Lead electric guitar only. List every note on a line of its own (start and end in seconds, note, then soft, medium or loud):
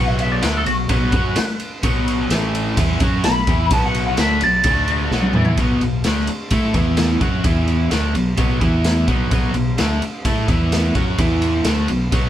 0.08 0.19 E5 medium
0.20 0.31 E5 medium
0.32 0.42 D5 medium
0.43 0.54 B4 medium
0.57 0.66 A4 loud
0.67 0.89 F#4 loud
0.90 2.27 B4 loud
3.25 3.70 B5 loud
3.73 3.83 A5 loud
3.85 4.05 F#5 medium
4.07 4.18 F#5 medium
4.19 4.41 E5 medium
4.44 5.56 D5 loud